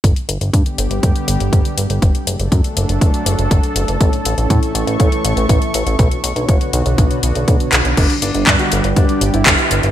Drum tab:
CC |----------------|----------------|----------------|----------------|
HH |xxxxxxxxxxxxxxxx|xxxxxxxxxxxxxxxx|xxxxxxxxxxxxxxxx|xxxxxxxxxxxxxxxx|
CP |----------------|----------------|----------------|--------------x-|
BD |o---o---o---o---|o---o---o---o---|o---o---o---o---|o---o---o---o---|

CC |x---------------|
HH |xxxxxxxxxxxxxxxx|
CP |----x-------x---|
BD |o---o---o---o---|